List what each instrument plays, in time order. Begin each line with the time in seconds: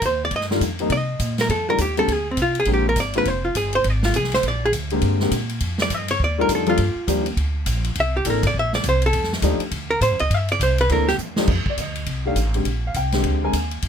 0.02 upright bass D#2, hollow-body jazz guitar C5, kick, hi-hat pedal, ride
0.25 hollow-body jazz guitar D5
0.31 upright bass G2, kick, ride
0.36 hollow-body jazz guitar D#5
0.41 snare
0.51 grand piano D#3 G3 A3 D4 F4, snare
0.60 upright bass F2, kick, hi-hat pedal, ride
0.79 grand piano D#3 G3 A#3 C4 D#4, ride
0.90 upright bass C3, hollow-body jazz guitar D#5, kick, ride
1.19 upright bass A#2, kick, hi-hat pedal, ride
1.38 hollow-body jazz guitar A#4, snare, ride
1.49 upright bass F2, hollow-body jazz guitar A4, kick, ride
1.68 grand piano D#3 G3 A3 D4 F4, hollow-body jazz guitar A#4
1.78 upright bass D#2, hollow-body jazz guitar G4, kick, hi-hat pedal, ride
1.97 grand piano D3 G#3 A#3 C4 G4, hollow-body jazz guitar A4, ride
2.08 upright bass D2, kick, ride
2.12 hollow-body jazz guitar G#4
2.31 hollow-body jazz guitar C4
2.37 upright bass C2, kick, hi-hat pedal, ride
2.42 hollow-body jazz guitar F4
2.55 ride
2.60 hollow-body jazz guitar G#4
2.65 upright bass A#1, grand piano D3 G#3 A#3 C4 G4, kick, ride
2.74 hollow-body jazz guitar G4
2.89 hollow-body jazz guitar A#4
2.96 upright bass G#1, kick, hi-hat pedal, ride
3.00 hollow-body jazz guitar D5
3.13 grand piano D3 G#3 A#3 C4 F4, ride
3.18 hollow-body jazz guitar B4
3.25 upright bass F1, hollow-body jazz guitar C5, kick, ride
3.45 hollow-body jazz guitar F4
3.55 upright bass G1, hollow-body jazz guitar G#4, kick, hi-hat pedal, ride
3.73 hollow-body jazz guitar C5, ride
3.84 upright bass G#1, kick, ride
3.90 hollow-body jazz guitar D5
4.03 hollow-body jazz guitar F4, snare
4.14 upright bass C2, hollow-body jazz guitar G#4, kick, hi-hat pedal, ride
4.24 snare
4.32 hollow-body jazz guitar C5, snare, ride
4.43 upright bass A#1, kick, ride
4.48 hollow-body jazz guitar D5
4.65 hollow-body jazz guitar G#4
4.72 upright bass D2, kick, hi-hat pedal, ride
4.90 grand piano D3 G#3 A#3 C4 G4, ride
5.02 upright bass G2, kick, ride
5.20 grand piano D3 G#3 A#3 C4 G4, snare
5.31 upright bass A#2, kick, hi-hat pedal, ride
5.49 ride
5.60 upright bass F2, kick, ride
5.78 hollow-body jazz guitar D5, snare
5.90 upright bass G2, kick, hi-hat pedal, ride
5.94 hollow-body jazz guitar D#5
6.08 hollow-body jazz guitar C#5, ride
6.20 upright bass D#2, kick
6.24 hollow-body jazz guitar D5
6.38 grand piano D#3 G3 A3 D4 F4, hollow-body jazz guitar A#4
6.49 upright bass F2, kick, hi-hat pedal, ride
6.55 hollow-body jazz guitar A4
6.66 grand piano F3 G3 A#3 D4 A4, hollow-body jazz guitar F4, ride
6.77 upright bass G2, kick, ride
6.95 muted upright bass stroke
7.07 upright bass D#2, grand piano F3 G3 A#3 D4 G4, kick, hi-hat pedal, ride
7.26 ride
7.37 upright bass D2, kick, ride
7.66 upright bass A#1, kick, hi-hat pedal, ride
7.84 ride
7.95 upright bass C2, kick, ride
8.00 hollow-body jazz guitar E5
8.17 hollow-body jazz guitar G4
8.25 upright bass A1, grand piano E3 A#3 C4 D4 A4, kick, hi-hat pedal, ride
8.30 hollow-body jazz guitar A#4
8.43 hollow-body jazz guitar D5, kick, ride
8.54 upright bass A#1, kick
8.59 hollow-body jazz guitar E5
8.73 hollow-body jazz guitar D5, snare
8.84 upright bass C2, kick, hi-hat pedal, ride
8.89 hollow-body jazz guitar C5
9.02 ride
9.06 hollow-body jazz guitar A4
9.13 upright bass F2, kick, ride
9.23 snare
9.33 snare
9.42 upright bass D#2, grand piano F3 A3 D4 D#4 G4, kick, hi-hat pedal, ride
9.59 muted upright bass stroke, ride
9.71 upright bass D2, kick, ride
9.91 hollow-body jazz guitar A#4
10.01 upright bass A2, hollow-body jazz guitar C5, kick, hi-hat pedal, ride
10.11 upright bass F#2
10.19 upright bass D2, hollow-body jazz guitar D#5, ride
10.30 upright bass G2, kick, ride
10.34 hollow-body jazz guitar E5
10.48 hollow-body jazz guitar D5, ride
10.59 upright bass C2, hollow-body jazz guitar C5, kick, hi-hat pedal, ride
10.78 hollow-body jazz guitar B4, ride
10.89 upright bass D2, grand piano E3 A#3 C4 D4 A4, hollow-body jazz guitar A#4, kick, ride
11.08 hollow-body jazz guitar G4, snare
11.18 upright bass E2, hi-hat pedal
11.36 grand piano F3 A3 D4 D#4 G4, snare
11.47 upright bass F2, kick, crash
11.65 muted upright bass stroke, kick
11.69 grand piano D5
11.77 upright bass D2, grand piano D#5, kick, hi-hat pedal, ride
11.95 ride
12.06 upright bass C2, kick, ride
12.25 grand piano D#3 A3 D4 G4 F5
12.36 upright bass A1, kick, hi-hat pedal, ride
12.54 grand piano D3 G#3 C4 G4, ride
12.65 upright bass A#1, kick, ride
12.87 grand piano F5
12.94 upright bass C2, grand piano G5, kick, hi-hat pedal, ride
13.12 grand piano D3 G#3 C4 G4, snare, ride
13.24 upright bass D2, kick, ride
13.44 grand piano D3 G#3 C4 A#4 G#5
13.53 upright bass D#2, kick, hi-hat pedal, ride
13.71 ride
13.82 upright bass F2, kick, ride